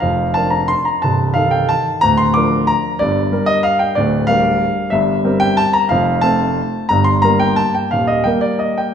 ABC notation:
X:1
M:3/4
L:1/8
Q:1/4=181
K:Bb
V:1 name="Grand piano"
f2 a b c' b | a2 f g a2 | b c' d'2 b2 | [K:Gm] d3 e f g |
d2 f4 | =e3 g a b | f2 a4 | b c' b g a g |
f e g d e g |]
V:2 name="Grand piano" clef=bass
[F,,,F,,]2 [F,DB]4 | [C,,,C,,]2 [E,EA]4 | [D,,,D,,]2 [F,DB]4 | [K:Gm] [G,,,G,,]2 [G,DB]4 |
[D,,,D,,]2 [G,DB]4 | [G,,,G,,]2 [G,CB]4 | [F,,,F,,]2 [A,CA]4 | [G,,,G,,]2 [G,B,B]4 |
[E,,,E,,]2 [G,B,B]4 |]